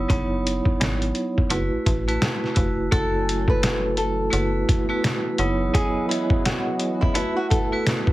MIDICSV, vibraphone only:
0, 0, Header, 1, 2, 480
1, 0, Start_track
1, 0, Tempo, 705882
1, 65, Time_signature, 4, 2, 24, 8
1, 5526, End_track
2, 0, Start_track
2, 0, Title_t, "Vibraphone"
2, 0, Program_c, 0, 11
2, 58, Note_on_c, 0, 54, 94
2, 60, Note_on_c, 0, 59, 90
2, 61, Note_on_c, 0, 63, 81
2, 62, Note_on_c, 0, 64, 84
2, 64, Note_on_c, 0, 73, 94
2, 1011, Note_off_c, 0, 64, 0
2, 1017, Note_on_c, 0, 57, 86
2, 1020, Note_on_c, 0, 64, 86
2, 1021, Note_on_c, 0, 66, 86
2, 1022, Note_off_c, 0, 54, 0
2, 1022, Note_off_c, 0, 59, 0
2, 1023, Note_off_c, 0, 63, 0
2, 1023, Note_on_c, 0, 71, 104
2, 1024, Note_off_c, 0, 73, 0
2, 1373, Note_off_c, 0, 57, 0
2, 1374, Note_off_c, 0, 64, 0
2, 1374, Note_off_c, 0, 66, 0
2, 1375, Note_off_c, 0, 71, 0
2, 1411, Note_on_c, 0, 57, 90
2, 1413, Note_on_c, 0, 64, 80
2, 1415, Note_on_c, 0, 66, 77
2, 1417, Note_on_c, 0, 71, 102
2, 1722, Note_off_c, 0, 57, 0
2, 1723, Note_off_c, 0, 64, 0
2, 1724, Note_off_c, 0, 66, 0
2, 1725, Note_off_c, 0, 71, 0
2, 1730, Note_on_c, 0, 57, 75
2, 1732, Note_on_c, 0, 64, 68
2, 1733, Note_on_c, 0, 66, 71
2, 1735, Note_on_c, 0, 71, 76
2, 1962, Note_off_c, 0, 57, 0
2, 1963, Note_off_c, 0, 64, 0
2, 1964, Note_off_c, 0, 66, 0
2, 1965, Note_off_c, 0, 71, 0
2, 1981, Note_on_c, 0, 57, 94
2, 1983, Note_on_c, 0, 64, 87
2, 1985, Note_on_c, 0, 66, 84
2, 1987, Note_on_c, 0, 69, 119
2, 2918, Note_off_c, 0, 57, 0
2, 2920, Note_off_c, 0, 64, 0
2, 2922, Note_off_c, 0, 66, 0
2, 2927, Note_on_c, 0, 57, 97
2, 2928, Note_on_c, 0, 64, 87
2, 2930, Note_on_c, 0, 66, 79
2, 2933, Note_on_c, 0, 71, 99
2, 2946, Note_off_c, 0, 69, 0
2, 3287, Note_off_c, 0, 57, 0
2, 3288, Note_off_c, 0, 64, 0
2, 3289, Note_off_c, 0, 66, 0
2, 3290, Note_off_c, 0, 71, 0
2, 3326, Note_on_c, 0, 57, 90
2, 3329, Note_on_c, 0, 64, 86
2, 3330, Note_on_c, 0, 66, 91
2, 3332, Note_on_c, 0, 71, 107
2, 3640, Note_off_c, 0, 57, 0
2, 3641, Note_off_c, 0, 64, 0
2, 3642, Note_off_c, 0, 66, 0
2, 3643, Note_off_c, 0, 71, 0
2, 3665, Note_on_c, 0, 54, 97
2, 3666, Note_on_c, 0, 59, 86
2, 3668, Note_on_c, 0, 63, 88
2, 3669, Note_on_c, 0, 64, 92
2, 3670, Note_on_c, 0, 73, 103
2, 3890, Note_off_c, 0, 54, 0
2, 3891, Note_off_c, 0, 59, 0
2, 3892, Note_off_c, 0, 63, 0
2, 3892, Note_off_c, 0, 64, 0
2, 3893, Note_off_c, 0, 73, 0
2, 3898, Note_on_c, 0, 54, 96
2, 3899, Note_on_c, 0, 59, 90
2, 3901, Note_on_c, 0, 75, 89
2, 3902, Note_on_c, 0, 64, 87
2, 3904, Note_on_c, 0, 73, 98
2, 4851, Note_off_c, 0, 64, 0
2, 4857, Note_on_c, 0, 57, 88
2, 4859, Note_on_c, 0, 64, 88
2, 4860, Note_on_c, 0, 66, 86
2, 4862, Note_off_c, 0, 54, 0
2, 4862, Note_off_c, 0, 59, 0
2, 4862, Note_on_c, 0, 71, 102
2, 4863, Note_off_c, 0, 75, 0
2, 4864, Note_off_c, 0, 73, 0
2, 5212, Note_off_c, 0, 57, 0
2, 5213, Note_off_c, 0, 64, 0
2, 5214, Note_off_c, 0, 66, 0
2, 5215, Note_off_c, 0, 71, 0
2, 5251, Note_on_c, 0, 57, 94
2, 5252, Note_on_c, 0, 64, 81
2, 5255, Note_on_c, 0, 66, 81
2, 5256, Note_on_c, 0, 71, 103
2, 5526, Note_off_c, 0, 57, 0
2, 5526, Note_off_c, 0, 64, 0
2, 5526, Note_off_c, 0, 66, 0
2, 5526, Note_off_c, 0, 71, 0
2, 5526, End_track
0, 0, End_of_file